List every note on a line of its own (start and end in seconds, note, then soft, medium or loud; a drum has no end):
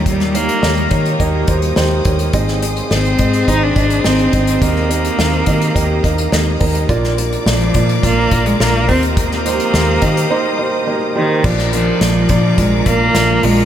0.00 0.48 D#2 loud
0.00 0.59 D#3 medium
0.00 0.23 A#3 medium
0.00 0.23 D#4 medium
0.00 0.23 G4 medium
0.00 2.31 G4 medium
0.00 0.23 C#5 medium
0.00 2.31 C#5 medium
0.00 2.30 A#5 soft
0.00 6.85 D#6 medium
0.06 0.36 G3 medium
0.06 kick medium
0.06 closed hi-hat medium
0.20 snare soft
0.20 closed hi-hat soft
0.34 0.56 A#3 medium
0.34 0.92 A#3 loud
0.34 0.56 D#4 medium
0.34 0.56 G4 medium
0.34 0.56 C#5 medium
0.34 closed hi-hat medium
0.49 closed hi-hat soft
0.63 0.86 D#2 medium
0.63 0.85 A#3 medium
0.63 0.85 D#4 medium
0.63 0.85 G4 medium
0.63 0.85 C#5 medium
0.63 snare medium
0.77 closed hi-hat soft
0.91 1.15 D#3 medium
0.91 1.13 A#3 medium
0.91 1.13 D#4 medium
0.91 1.13 G4 medium
0.91 1.13 C#5 medium
0.91 kick medium
0.91 closed hi-hat medium
1.06 closed hi-hat soft
1.20 1.43 D#2 medium
1.20 1.42 A#3 loud
1.20 1.42 D#4 medium
1.20 1.42 G4 medium
1.20 1.42 D#5 loud
1.20 kick medium
1.20 closed hi-hat medium
1.48 1.72 D#2 medium
1.48 1.70 A#3 medium
1.48 1.70 D#4 medium
1.48 1.70 G4 medium
1.48 1.71 C5 medium
1.48 kick medium
1.48 closed hi-hat medium
1.62 closed hi-hat medium
1.76 2.00 D#2 medium
1.76 1.99 A#3 medium
1.76 1.99 D#4 medium
1.76 1.99 G4 medium
1.76 1.99 C5 medium
1.76 snare loud
1.91 closed hi-hat soft
2.05 2.29 D#2 medium
2.05 2.27 A#3 medium
2.05 2.27 D#4 medium
2.05 2.27 G4 medium
2.05 2.27 C#5 medium
2.05 kick medium
2.05 closed hi-hat medium
2.19 closed hi-hat medium
2.33 2.80 G#1 medium
2.33 3.15 G#2 medium
2.33 2.56 C4 medium
2.33 2.56 D#4 medium
2.33 2.56 G#4 medium
2.33 4.59 G#4 medium
2.33 6.85 C5 medium
2.33 2.56 D#5 loud
2.33 4.60 C6 medium
2.33 kick medium
2.33 closed hi-hat medium
2.48 snare soft
2.62 2.84 C4 medium
2.62 2.84 D#4 medium
2.62 2.84 G#4 medium
2.62 2.84 D#5 medium
2.62 closed hi-hat medium
2.77 closed hi-hat soft
2.91 3.14 G#1 medium
2.91 3.13 C4 medium
2.91 3.50 C4 medium
2.91 3.13 D#4 medium
2.91 3.13 G#4 medium
2.91 3.13 D#5 medium
2.91 snare loud
3.05 closed hi-hat soft
3.19 3.43 G#2 medium
3.19 3.41 C4 medium
3.19 3.41 D#4 medium
3.19 3.41 G#4 medium
3.19 3.41 D#5 medium
3.19 kick medium
3.19 closed hi-hat medium
3.33 closed hi-hat soft
3.48 3.71 G#1 medium
3.48 3.70 C4 medium
3.48 3.70 D#4 medium
3.48 3.64 D#4 loud
3.48 3.70 G#4 medium
3.48 3.70 C5 medium
3.48 kick medium
3.48 closed hi-hat medium
3.63 4.07 D4 loud
3.76 4.00 G#1 medium
3.76 3.98 C4 medium
3.76 3.98 D#4 medium
3.76 3.98 D#5 medium
3.76 kick medium
3.76 closed hi-hat medium
3.90 closed hi-hat medium
4.04 4.28 G#1 medium
4.04 4.27 C4 medium
4.04 4.63 C4 medium
4.04 4.27 D#4 medium
4.04 4.27 G#4 medium
4.04 4.27 D#5 medium
4.04 snare loud
4.19 closed hi-hat soft
4.33 4.57 G#1 medium
4.33 4.55 C4 medium
4.33 4.55 D#4 medium
4.33 4.55 G#4 medium
4.33 4.55 D#5 medium
4.33 kick medium
4.33 closed hi-hat medium
4.47 closed hi-hat medium
4.61 5.08 D#2 loud
4.61 5.43 D#3 medium
4.61 4.84 A#3 medium
4.61 6.33 A#3 medium
4.61 4.84 D#4 medium
4.61 4.84 G4 medium
4.61 6.87 G4 medium
4.61 4.84 D#5 medium
4.61 6.87 A#5 medium
4.61 kick loud
4.61 closed hi-hat medium
4.76 snare soft
4.90 5.12 A#3 medium
4.90 5.12 D#4 medium
4.90 5.12 G4 medium
4.90 5.12 D#5 medium
4.90 closed hi-hat medium
5.05 closed hi-hat medium
5.18 5.42 D#2 medium
5.18 5.41 A#3 medium
5.18 5.41 D#4 medium
5.18 5.41 G4 medium
5.18 5.41 F5 medium
5.18 snare loud
5.33 closed hi-hat soft
5.46 5.70 D#3 medium
5.46 5.69 A#3 medium
5.46 5.69 D#4 medium
5.46 5.69 G4 medium
5.46 5.69 D#5 medium
5.46 kick medium
5.46 closed hi-hat medium
5.61 closed hi-hat soft
5.75 5.99 D#2 medium
5.75 5.97 A#3 medium
5.75 5.97 D#4 medium
5.75 5.97 G4 medium
5.75 5.97 D#5 loud
5.75 kick medium
5.75 closed hi-hat medium
6.04 6.27 D#2 medium
6.04 6.26 A#3 medium
6.04 6.26 D#4 medium
6.04 6.26 G4 medium
6.04 6.26 D#5 medium
6.04 kick medium
6.04 closed hi-hat medium
6.18 closed hi-hat medium
6.32 6.56 D#2 medium
6.32 6.54 A#3 medium
6.32 6.55 D#4 medium
6.32 6.54 G4 medium
6.32 6.54 D#5 loud
6.32 6.59 G5 medium
6.32 snare loud
6.60 6.84 D#2 medium
6.60 6.83 A#3 medium
6.60 6.83 D#4 medium
6.60 6.83 G4 medium
6.60 6.83 A#4 medium
6.60 6.87 A#5 medium
6.60 kick medium
6.60 open hi-hat medium
6.75 closed hi-hat medium
6.89 7.36 A#1 medium
6.89 7.71 A#2 medium
6.89 7.11 A#3 loud
6.89 7.11 D4 medium
6.89 7.11 F4 loud
6.89 8.86 F4 medium
6.89 8.86 D5 medium
6.89 7.11 D5 loud
6.89 11.40 A#5 medium
6.89 8.86 D6 medium
6.89 kick medium
6.89 closed hi-hat medium
7.04 snare soft
7.18 7.40 A#3 medium
7.18 7.40 D4 medium
7.18 7.40 F4 medium
7.18 7.40 D5 medium
7.18 closed hi-hat medium
7.32 closed hi-hat soft
7.46 7.69 A#1 medium
7.46 8.00 F3 medium
7.46 7.68 A#3 medium
7.46 7.68 D4 medium
7.46 7.68 F4 medium
7.46 7.68 D5 medium
7.46 snare loud
7.60 closed hi-hat soft
7.74 7.98 A#2 medium
7.74 7.97 A#3 medium
7.74 7.97 D4 medium
7.74 7.97 F4 medium
7.74 7.97 D5 medium
7.74 kick medium
7.74 closed hi-hat medium
7.89 closed hi-hat soft
8.03 8.27 A#1 medium
8.03 8.25 A#3 medium
8.03 8.48 A#3 loud
8.03 8.25 D4 medium
8.03 8.25 F4 medium
8.03 8.25 D5 medium
8.03 kick medium
8.03 closed hi-hat medium
8.31 8.55 A#1 medium
8.31 8.54 A#3 medium
8.31 8.54 D4 medium
8.31 8.54 F4 medium
8.31 8.54 D5 medium
8.31 kick medium
8.31 closed hi-hat medium
8.46 8.62 G#3 medium
8.46 closed hi-hat medium
8.60 8.89 A#1 medium
8.60 8.82 A#3 medium
8.60 8.88 A#3 loud
8.60 8.82 D4 medium
8.60 8.82 F4 medium
8.60 8.82 D5 medium
8.60 snare loud
8.75 closed hi-hat soft
8.88 9.59 D#2 medium
8.88 9.70 D#3 medium
8.88 9.34 A#3 medium
8.88 9.01 C4 loud
8.88 9.34 D#4 medium
8.88 11.42 G4 medium
8.88 9.34 G4 medium
8.88 9.34 C5 medium
8.88 11.42 C5 medium
8.88 11.42 D#6 medium
8.88 kick medium
8.88 open hi-hat medium
9.03 closed hi-hat medium
9.17 10.84 A#3 medium
9.17 kick loud
9.17 closed hi-hat medium
9.31 snare soft
9.45 9.67 A#3 medium
9.45 9.67 D#4 medium
9.45 9.67 G4 medium
9.45 9.67 C5 medium
9.45 closed hi-hat medium
9.60 closed hi-hat soft
9.73 9.97 D#2 loud
9.73 9.95 A#3 medium
9.73 9.96 D#4 medium
9.73 9.96 G4 medium
9.73 9.96 C5 medium
9.73 snare loud
10.02 10.26 D#3 medium
10.02 10.24 A#3 medium
10.02 10.24 D#4 medium
10.02 10.24 G4 medium
10.02 10.24 D#5 medium
10.02 kick medium
10.02 closed hi-hat medium
10.17 closed hi-hat soft
10.30 10.53 A#3 loud
10.30 10.52 D#4 loud
10.30 10.52 G4 medium
10.30 10.53 C5 loud
10.59 10.81 A#3 medium
10.59 10.81 D#4 medium
10.59 10.81 G4 medium
10.59 10.81 C5 medium
10.87 11.09 A#3 medium
10.87 11.09 D#4 medium
10.87 11.09 G4 medium
10.87 11.09 A#4 medium
11.16 11.47 D#3 medium
11.16 11.38 A#3 medium
11.16 11.38 D#4 medium
11.16 11.38 G4 medium
11.16 11.38 C5 medium
11.44 11.91 A#1 medium
11.44 12.25 A#2 medium
11.44 11.73 F3 medium
11.44 11.66 A#3 medium
11.44 11.66 D4 medium
11.44 11.66 F4 medium
11.44 13.65 F4 medium
11.44 13.65 D5 medium
11.44 11.66 D5 medium
11.44 13.65 A#5 medium
11.44 13.65 D6 medium
11.44 kick loud
11.44 crash medium
11.59 snare soft
11.73 12.61 F3 loud
11.73 11.95 A#3 medium
11.73 11.95 D4 medium
11.73 11.95 F4 medium
11.73 11.95 D5 medium
11.73 closed hi-hat medium
12.01 12.24 A#1 medium
12.01 12.23 A#3 medium
12.01 12.23 D4 medium
12.01 12.23 F4 medium
12.01 12.23 D5 medium
12.01 snare loud
12.01 closed hi-hat medium
12.29 12.53 A#2 medium
12.29 12.52 A#3 medium
12.29 12.52 D4 medium
12.29 12.52 F4 medium
12.29 12.52 D5 medium
12.29 kick medium
12.29 closed hi-hat medium
12.58 12.81 A#1 loud
12.58 12.89 G#3 loud
12.58 12.80 A#3 medium
12.58 12.80 D4 medium
12.58 12.80 F4 medium
12.58 12.80 A#4 medium
12.58 kick medium
12.58 closed hi-hat medium
12.86 13.10 A#1 medium
12.86 13.08 A#3 medium
12.86 13.46 A#3 loud
12.86 13.08 D4 medium
12.86 13.08 F4 medium
12.86 13.08 A#4 medium
12.86 kick medium
12.86 closed hi-hat medium
13.15 13.38 A#1 medium
13.15 13.37 A#3 medium
13.15 13.37 D4 medium
13.15 13.37 F4 medium
13.15 13.37 A#4 medium
13.15 snare loud
13.15 closed hi-hat medium
13.43 13.65 A#1 loud
13.43 13.65 G#3 loud
13.43 13.65 A#3 medium
13.43 13.65 D4 medium
13.43 13.65 F4 medium
13.43 13.65 A#4 medium
13.43 open hi-hat medium